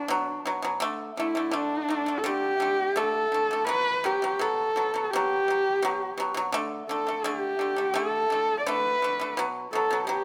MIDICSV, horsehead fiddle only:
0, 0, Header, 1, 2, 480
1, 0, Start_track
1, 0, Tempo, 713436
1, 552, Time_signature, 4, 2, 24, 8
1, 6891, End_track
2, 0, Start_track
2, 0, Title_t, "Horsehead fiddle"
2, 0, Program_c, 0, 110
2, 0, Note_on_c, 0, 62, 94
2, 279, Note_off_c, 0, 62, 0
2, 793, Note_on_c, 0, 64, 82
2, 1028, Note_on_c, 0, 62, 91
2, 1038, Note_off_c, 0, 64, 0
2, 1466, Note_on_c, 0, 69, 69
2, 1476, Note_off_c, 0, 62, 0
2, 1518, Note_on_c, 0, 67, 101
2, 1528, Note_off_c, 0, 69, 0
2, 1994, Note_on_c, 0, 69, 102
2, 2004, Note_off_c, 0, 67, 0
2, 2472, Note_off_c, 0, 69, 0
2, 2476, Note_on_c, 0, 71, 119
2, 2726, Note_on_c, 0, 67, 102
2, 2736, Note_off_c, 0, 71, 0
2, 2962, Note_on_c, 0, 69, 94
2, 2972, Note_off_c, 0, 67, 0
2, 3391, Note_off_c, 0, 69, 0
2, 3391, Note_on_c, 0, 69, 61
2, 3439, Note_on_c, 0, 67, 110
2, 3449, Note_off_c, 0, 69, 0
2, 4158, Note_off_c, 0, 67, 0
2, 4637, Note_on_c, 0, 69, 83
2, 4863, Note_on_c, 0, 67, 90
2, 4873, Note_off_c, 0, 69, 0
2, 5346, Note_on_c, 0, 69, 106
2, 5356, Note_off_c, 0, 67, 0
2, 5776, Note_off_c, 0, 69, 0
2, 5780, Note_on_c, 0, 74, 62
2, 5829, Note_on_c, 0, 71, 108
2, 5839, Note_off_c, 0, 74, 0
2, 6310, Note_off_c, 0, 71, 0
2, 6542, Note_on_c, 0, 69, 84
2, 6769, Note_off_c, 0, 69, 0
2, 6782, Note_on_c, 0, 67, 91
2, 6891, Note_off_c, 0, 67, 0
2, 6891, End_track
0, 0, End_of_file